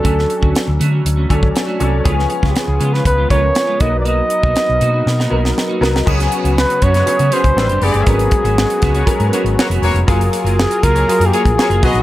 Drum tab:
CC |----------------|----------------|----------------|x---------------|
HH |x-x-x-x-x-x-x-x-|x-x-x-x-x-x-x-x-|x-x-x-x---------|-xxx-xxxxxxx-xox|
SD |-o--o-------o---|-o-oo--o----o---|----o---oo-oo-oo|-o--o--o----o---|
BD |o--o------oo----|o--o----o-o---o-|---o------------|o-----o----o----|

CC |----------------|----------------|
HH |xxxx-xxxxxxx-xox|xxxx-xxxxxxx-xox|
SD |----o-o-----o---|----o-------o---|
BD |o-o---o-o-------|o-----o----o--o-|